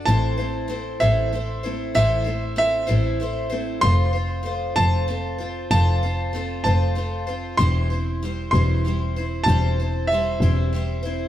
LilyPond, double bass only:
\new Staff \with { instrumentName = "Double bass" } { \clef bass \time 6/8 \key a \minor \tempo 4. = 64 a,,4. a,,4. | a,,4. a,,4. | f,,4. f,,4. | f,,4. f,,4. |
e,,4. e,,4. | e,,4. e,,4. | }